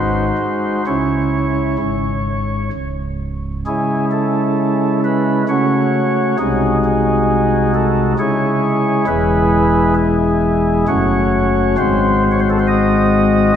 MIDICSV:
0, 0, Header, 1, 2, 480
1, 0, Start_track
1, 0, Key_signature, 4, "minor"
1, 0, Tempo, 927357
1, 444, Time_signature, 3, 2, 24, 8
1, 2365, Tempo, 899550
1, 7164, End_track
2, 0, Start_track
2, 0, Title_t, "Pipe organ"
2, 0, Program_c, 0, 19
2, 0, Note_on_c, 0, 32, 59
2, 0, Note_on_c, 0, 44, 59
2, 0, Note_on_c, 0, 63, 46
2, 0, Note_on_c, 0, 66, 48
2, 0, Note_on_c, 0, 72, 89
2, 165, Note_off_c, 0, 32, 0
2, 166, Note_off_c, 0, 44, 0
2, 197, Note_on_c, 0, 56, 61
2, 404, Note_off_c, 0, 56, 0
2, 428, Note_off_c, 0, 63, 0
2, 428, Note_off_c, 0, 72, 0
2, 429, Note_off_c, 0, 66, 0
2, 448, Note_on_c, 0, 61, 47
2, 449, Note_on_c, 0, 73, 81
2, 450, Note_on_c, 0, 37, 58
2, 452, Note_on_c, 0, 49, 57
2, 452, Note_on_c, 0, 64, 49
2, 915, Note_off_c, 0, 61, 0
2, 917, Note_off_c, 0, 37, 0
2, 918, Note_off_c, 0, 49, 0
2, 918, Note_off_c, 0, 64, 0
2, 926, Note_on_c, 0, 32, 60
2, 926, Note_on_c, 0, 44, 57
2, 1392, Note_off_c, 0, 73, 0
2, 1394, Note_off_c, 0, 32, 0
2, 1395, Note_off_c, 0, 44, 0
2, 1411, Note_on_c, 0, 37, 53
2, 1413, Note_on_c, 0, 25, 54
2, 1878, Note_off_c, 0, 37, 0
2, 1879, Note_off_c, 0, 25, 0
2, 1896, Note_on_c, 0, 68, 85
2, 1897, Note_on_c, 0, 61, 53
2, 1899, Note_on_c, 0, 64, 44
2, 1901, Note_on_c, 0, 49, 61
2, 1901, Note_on_c, 0, 56, 46
2, 2096, Note_off_c, 0, 68, 0
2, 2131, Note_on_c, 0, 69, 84
2, 2592, Note_off_c, 0, 69, 0
2, 2618, Note_on_c, 0, 71, 86
2, 2818, Note_off_c, 0, 71, 0
2, 2829, Note_off_c, 0, 61, 0
2, 2830, Note_off_c, 0, 64, 0
2, 2831, Note_off_c, 0, 49, 0
2, 2831, Note_off_c, 0, 56, 0
2, 2854, Note_on_c, 0, 61, 45
2, 2856, Note_on_c, 0, 49, 59
2, 2857, Note_on_c, 0, 57, 48
2, 2857, Note_on_c, 0, 66, 46
2, 2857, Note_on_c, 0, 73, 90
2, 3320, Note_off_c, 0, 61, 0
2, 3321, Note_off_c, 0, 49, 0
2, 3321, Note_off_c, 0, 57, 0
2, 3321, Note_off_c, 0, 66, 0
2, 3321, Note_off_c, 0, 73, 0
2, 3334, Note_on_c, 0, 63, 47
2, 3335, Note_on_c, 0, 68, 87
2, 3337, Note_on_c, 0, 36, 64
2, 3338, Note_on_c, 0, 48, 52
2, 3338, Note_on_c, 0, 56, 52
2, 3338, Note_on_c, 0, 66, 52
2, 3538, Note_off_c, 0, 68, 0
2, 3581, Note_on_c, 0, 68, 82
2, 4042, Note_off_c, 0, 68, 0
2, 4061, Note_on_c, 0, 69, 82
2, 4260, Note_off_c, 0, 69, 0
2, 4271, Note_off_c, 0, 63, 0
2, 4272, Note_off_c, 0, 36, 0
2, 4273, Note_off_c, 0, 48, 0
2, 4273, Note_off_c, 0, 56, 0
2, 4273, Note_off_c, 0, 66, 0
2, 4295, Note_on_c, 0, 56, 49
2, 4298, Note_on_c, 0, 73, 86
2, 4299, Note_on_c, 0, 49, 56
2, 4299, Note_on_c, 0, 64, 50
2, 4299, Note_on_c, 0, 68, 43
2, 4754, Note_off_c, 0, 56, 0
2, 4754, Note_off_c, 0, 64, 0
2, 4756, Note_off_c, 0, 49, 0
2, 4756, Note_off_c, 0, 68, 0
2, 4756, Note_off_c, 0, 73, 0
2, 4765, Note_on_c, 0, 64, 51
2, 4767, Note_on_c, 0, 68, 54
2, 4767, Note_on_c, 0, 71, 93
2, 4768, Note_on_c, 0, 28, 65
2, 4768, Note_on_c, 0, 40, 63
2, 4768, Note_on_c, 0, 56, 52
2, 5228, Note_off_c, 0, 68, 0
2, 5228, Note_off_c, 0, 71, 0
2, 5239, Note_on_c, 0, 68, 84
2, 5711, Note_off_c, 0, 64, 0
2, 5713, Note_off_c, 0, 28, 0
2, 5713, Note_off_c, 0, 40, 0
2, 5713, Note_off_c, 0, 56, 0
2, 5717, Note_off_c, 0, 68, 0
2, 5732, Note_on_c, 0, 61, 54
2, 5732, Note_on_c, 0, 66, 51
2, 5732, Note_on_c, 0, 73, 94
2, 5733, Note_on_c, 0, 30, 66
2, 5733, Note_on_c, 0, 57, 50
2, 5734, Note_on_c, 0, 42, 65
2, 6200, Note_off_c, 0, 61, 0
2, 6200, Note_off_c, 0, 66, 0
2, 6200, Note_off_c, 0, 73, 0
2, 6201, Note_off_c, 0, 30, 0
2, 6201, Note_off_c, 0, 42, 0
2, 6201, Note_off_c, 0, 57, 0
2, 6210, Note_on_c, 0, 60, 59
2, 6211, Note_on_c, 0, 44, 73
2, 6211, Note_on_c, 0, 72, 95
2, 6212, Note_on_c, 0, 66, 57
2, 6214, Note_on_c, 0, 32, 64
2, 6216, Note_on_c, 0, 56, 55
2, 6453, Note_off_c, 0, 72, 0
2, 6498, Note_on_c, 0, 73, 83
2, 6538, Note_off_c, 0, 73, 0
2, 6545, Note_on_c, 0, 72, 89
2, 6585, Note_off_c, 0, 72, 0
2, 6597, Note_on_c, 0, 69, 86
2, 6636, Note_off_c, 0, 69, 0
2, 6648, Note_on_c, 0, 72, 82
2, 6685, Note_off_c, 0, 72, 0
2, 6692, Note_on_c, 0, 75, 97
2, 7138, Note_off_c, 0, 60, 0
2, 7139, Note_off_c, 0, 44, 0
2, 7139, Note_off_c, 0, 66, 0
2, 7140, Note_off_c, 0, 32, 0
2, 7141, Note_off_c, 0, 56, 0
2, 7150, Note_off_c, 0, 75, 0
2, 7164, End_track
0, 0, End_of_file